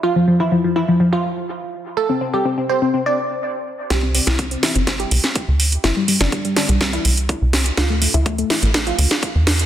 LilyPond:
<<
  \new Staff \with { instrumentName = "Synth arpeggio sound" } { \time 4/4 \key c \major \tempo 4 = 124 f'16 f16 f16 e'16 f16 f16 e'16 f16 f16 f'4. r16 | a'16 c'16 c'16 g'16 c'16 c'16 c''16 c'16 c'16 d''4. r16 | g'16 c'16 c'16 e'16 c'16 c'16 e'16 c'16 c'16 g'4. r16 | e'16 g16 g16 d'16 g16 g16 d'16 g16 g16 e'4. r16 |
f'16 a16 a16 e'16 a16 a16 e'16 a16 a16 f'4. r16 | }
  \new Staff \with { instrumentName = "Analog synth bass" } { \clef bass \time 4/4 \key c \major r1 | r1 | c,8 r16 c,8 r8 g,,8 r16 c,16 r8 d,8 r16 | g,,16 r8 g,,16 r8. c,8 r16 c,8 r16 c,8 r16 |
d,8 r16 d,8 r8 a,,8 r16 d,16 r8 e,8 r16 | }
  \new DrumStaff \with { instrumentName = "Drums" } \drummode { \time 4/4 r4 r4 r4 r4 | r4 r4 r4 r4 | <hh bd sn>8 hho16 <hh sn>16 <hh bd>16 hh16 <hho sn>16 hh16 <hh bd sn>16 hh16 hho16 <hh sn>16 <hh bd>8 hho16 hh16 | <hh bd sn>8 hho16 <hh sn>16 <hh bd>16 hh16 <hho sn>16 hh16 <hh bd sn>16 hh16 hho16 hh16 <hh bd>8 <hho sn>16 hh16 |
<hh bd sn>8 hho16 hh16 <hh bd>16 hh16 <hho sn>16 hh16 <hh bd sn>16 hh16 hho16 <hh sn>16 <hh bd>8 <hho sn>16 hh16 | }
>>